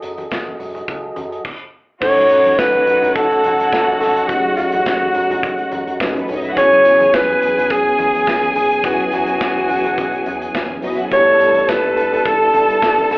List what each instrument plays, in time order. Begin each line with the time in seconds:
Already playing: tonewheel organ F#3 F#4 G#4 A4 D#5
0.02 picked electric bass F#2, closed hi-hat, tambourine, muted conga
0.17 closed hi-hat, high conga
0.31 picked electric bass F#1, kick, snare, tambourine
0.47 high conga
0.59 picked electric bass F#2, open hi-hat, tambourine, low conga
0.75 closed hi-hat, low conga
0.88 picked electric bass C#2, kick, closed hi-hat, tambourine
1.16 picked electric bass F#2, closed hi-hat, tambourine, muted conga, high conga
1.32 closed hi-hat
1.45 kick, crash
2.00 picked electric bass F#1, tine electric piano F#3 A3 C#4 D#4 A4, tonewheel organ F#3 A3 C#4 D#4 G#5, string section F#4 F#5, alto saxophone C#5, kick, crash, tambourine, muted conga
2.29 picked electric bass F#2, closed hi-hat, tambourine, muted conga
2.44 closed hi-hat, high conga
2.58 picked electric bass F#1, alto saxophone B4, kick, snare, tambourine, muted conga
2.74 high conga
2.86 picked electric bass F#2, closed hi-hat, tambourine, low conga
3.02 picked electric bass F#2, closed hi-hat, low conga
3.15 picked electric bass F#1, alto saxophone A4, kick, closed hi-hat, high conga
3.30 closed hi-hat
3.43 picked electric bass F#2, closed hi-hat, tambourine, muted conga, high conga
3.59 picked electric bass F#2, closed hi-hat
3.72 picked electric bass F#2, kick, snare, tambourine, muted conga
3.87 high conga
4.00 picked electric bass F1, alto saxophone A4, snare, open hi-hat, tambourine, muted conga, low conga
4.16 closed hi-hat
4.28 picked electric bass F#1, tine electric piano F#3 A3 C#4 D#4 G4, alto saxophone F#4, tonewheel organ F#4, kick, closed hi-hat, tambourine, muted conga
4.37 tine electric piano G#4
4.43 closed hi-hat
4.57 picked electric bass F#2, alto saxophone F#4, closed hi-hat, tambourine, muted conga
4.72 closed hi-hat, high conga
4.86 picked electric bass F#1, kick, snare, tambourine
5.03 high conga
5.14 picked electric bass F#2, closed hi-hat, tambourine, low conga
5.29 picked electric bass F#2, closed hi-hat, low conga
5.43 picked electric bass F#1, kick, closed hi-hat, muted conga, high conga
5.58 closed hi-hat
5.71 picked electric bass F#2, closed hi-hat, tambourine, high conga
5.87 picked electric bass F#2, closed hi-hat
5.99 picked electric bass F#2, tine electric piano F#3 A3 C#4 D#4 B4, kick, snare, tambourine
6.07 string section G#3 G#4
6.15 string section A3 A4, closed hi-hat, high conga
6.22 string section B3 B4
6.28 picked electric bass D#1, string section C#4 C#5, open hi-hat, tambourine, low conga
6.36 string section D#4 D#5
6.44 string section E4 E5, closed hi-hat
6.51 string section F#4 F#5
6.55 picked electric bass E1, tonewheel organ E3 B3 G#4, tine electric piano F#3 B3 C#4 E4 G#4, string section G#4 G#5, alto saxophone C#5, kick, closed hi-hat, tambourine
6.71 closed hi-hat
6.85 picked electric bass E2, closed hi-hat, tambourine
7.00 closed hi-hat, high conga
7.14 picked electric bass E1, alto saxophone B4, kick, snare, tambourine
7.30 high conga
7.41 picked electric bass E2, closed hi-hat, tambourine, muted conga, low conga
7.57 picked electric bass E2, closed hi-hat, low conga
7.70 picked electric bass E1, alto saxophone G#4, kick, closed hi-hat, tambourine, high conga
7.85 closed hi-hat
7.98 picked electric bass E2, closed hi-hat, muted conga, high conga
8.14 picked electric bass E2, closed hi-hat
8.27 picked electric bass E2, kick, snare, tambourine
8.43 closed hi-hat, high conga
8.55 picked electric bass D#1, alto saxophone G#4, open hi-hat, tambourine, muted conga, low conga
8.71 closed hi-hat
8.83 picked electric bass E1, tine electric piano F#3 B3 C#4 E4 B4, tonewheel organ E4, alto saxophone F#4, kick, closed hi-hat, tambourine
8.98 closed hi-hat
9.07 alto saxophone G#4
9.12 picked electric bass E2, alto saxophone F#4, closed hi-hat, tambourine, muted conga
9.26 closed hi-hat, high conga
9.40 picked electric bass E1, kick, snare, tambourine, muted conga
9.56 closed hi-hat, high conga
9.69 picked electric bass E2, open hi-hat, tambourine, muted conga, low conga
9.84 picked electric bass E2, closed hi-hat, low conga
9.98 picked electric bass B1, kick, closed hi-hat, tambourine, muted conga, high conga
10.13 closed hi-hat
10.26 picked electric bass E2, closed hi-hat, tambourine, high conga
10.42 closed hi-hat
10.54 picked electric bass F1, kick, snare, tambourine
10.71 high conga
10.82 picked electric bass F#1, tine electric piano F#3 B3 C#4 E4 F#4, string section D#4 D#5, open hi-hat, tambourine, muted conga, low conga
10.91 string section E4 E5
10.98 string section F#4 F#5, closed hi-hat
11.04 string section G#4 G#5
11.10 picked electric bass G1, tonewheel organ G3 D4 A4 B4, tine electric piano A3 B3 D4 E4 G4, string section A4 A5, alto saxophone C#5, kick, closed hi-hat, tambourine, muted conga
11.40 picked electric bass G2, closed hi-hat, tambourine, muted conga
11.55 closed hi-hat, high conga
11.68 picked electric bass G1, alto saxophone B4, kick, snare, tambourine, muted conga
11.85 high conga
11.96 picked electric bass G2, closed hi-hat, tambourine, muted conga, low conga
12.12 picked electric bass G2, closed hi-hat, low conga
12.25 picked electric bass G1, alto saxophone A4, kick, closed hi-hat, muted conga, high conga
12.53 picked electric bass G2, closed hi-hat, muted conga, high conga
12.68 picked electric bass G2, closed hi-hat
12.82 picked electric bass G2, kick, snare, tambourine
12.98 closed hi-hat, high conga
13.10 picked electric bass F#1, alto saxophone A4, snare, open hi-hat, tambourine, muted conga, low conga